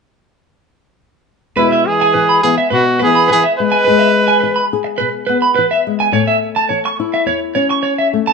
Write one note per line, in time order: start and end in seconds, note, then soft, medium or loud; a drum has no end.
1.56 2.08 E2 medium
1.56 1.88 B2 medium
1.56 3.56 G#3 medium
1.56 1.89 E4 medium
1.56 1.67 B4 medium
1.72 1.80 E5 medium
1.87 2.43 E3 medium
1.87 2.42 G#4 medium
2.01 2.09 G#5 medium
2.14 2.66 E3 medium
2.14 2.24 B4 medium
2.29 2.37 B5 medium
2.43 2.56 E3 medium
2.43 3.00 B3 medium
2.43 2.56 G#4 medium
2.58 2.66 E5 medium
2.70 3.23 B2 medium
2.70 2.99 B2 medium
2.70 2.98 F#4 medium
2.70 2.80 B4 medium
2.99 5.28 B3 medium
2.99 3.28 G#4 medium
2.99 3.09 B4 medium
3.04 3.28 E3 medium
3.15 3.23 B5 medium
3.28 3.81 E3 medium
3.28 3.43 G#4 medium
3.28 3.38 B4 medium
3.33 3.45 E3 medium
3.44 3.52 E5 medium
3.59 3.83 G#3 medium
3.59 4.67 B4 medium
3.63 4.70 G#3 medium
3.72 3.80 G#5 medium
3.85 4.38 E2 medium
3.85 5.86 G#3 medium
3.85 3.95 B4 medium
3.99 4.08 E5 medium
4.28 4.36 G#5 medium
4.40 4.94 E3 medium
4.40 4.51 B4 medium
4.56 4.64 B5 medium
4.73 6.11 G#4 medium
4.84 muted clean electric guitar stroke medium
4.98 5.51 B2 medium
4.98 5.08 B4 medium
5.27 6.14 B3 medium
5.27 5.37 B4 medium
5.42 5.50 B5 medium
5.55 6.09 E3 medium
5.55 5.65 B4 medium
5.71 5.79 E5 medium
5.87 6.11 G#3 soft
6.00 6.08 G#5 medium
6.12 6.64 A2 medium
6.12 8.12 A3 medium
6.12 6.23 C#5 medium
6.27 6.36 E5 medium
6.56 6.65 A5 medium
6.69 7.22 E3 medium
6.69 6.79 C#5 medium
6.86 6.94 C#6 medium
7.00 8.33 E4 medium
7.14 7.22 E5 medium
7.26 7.78 E2 medium
7.26 7.37 C#5 medium
7.55 8.33 C#4 medium
7.55 7.65 C#5 medium
7.71 7.79 C#6 medium
7.83 7.93 C#5 medium
7.98 8.07 E5 medium
8.13 8.33 A3 medium
8.27 8.33 A5 medium